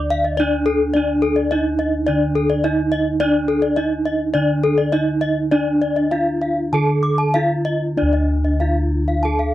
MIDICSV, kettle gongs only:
0, 0, Header, 1, 2, 480
1, 0, Start_track
1, 0, Tempo, 568182
1, 799, Time_signature, 4, 2, 24, 8
1, 4165, Tempo, 600000
1, 5605, Tempo, 627615
1, 7756, End_track
2, 0, Start_track
2, 0, Title_t, "Kettle gongs"
2, 0, Program_c, 0, 14
2, 0, Note_on_c, 0, 38, 81
2, 0, Note_on_c, 0, 62, 60
2, 292, Note_off_c, 0, 62, 0
2, 329, Note_on_c, 0, 63, 39
2, 397, Note_off_c, 0, 63, 0
2, 801, Note_on_c, 0, 62, 60
2, 1280, Note_on_c, 0, 63, 35
2, 1347, Note_off_c, 0, 63, 0
2, 1742, Note_off_c, 0, 38, 0
2, 1762, Note_on_c, 0, 50, 49
2, 2196, Note_off_c, 0, 62, 0
2, 2706, Note_on_c, 0, 62, 63
2, 3156, Note_off_c, 0, 50, 0
2, 3670, Note_on_c, 0, 50, 52
2, 4130, Note_off_c, 0, 62, 0
2, 4161, Note_on_c, 0, 63, 37
2, 4226, Note_off_c, 0, 63, 0
2, 4637, Note_on_c, 0, 62, 64
2, 5085, Note_off_c, 0, 50, 0
2, 5604, Note_on_c, 0, 50, 56
2, 6046, Note_off_c, 0, 62, 0
2, 6075, Note_on_c, 0, 63, 38
2, 6136, Note_off_c, 0, 63, 0
2, 6554, Note_on_c, 0, 62, 67
2, 6591, Note_on_c, 0, 38, 94
2, 7009, Note_off_c, 0, 50, 0
2, 7043, Note_on_c, 0, 63, 31
2, 7104, Note_off_c, 0, 63, 0
2, 7756, Note_off_c, 0, 38, 0
2, 7756, Note_off_c, 0, 62, 0
2, 7756, End_track
0, 0, End_of_file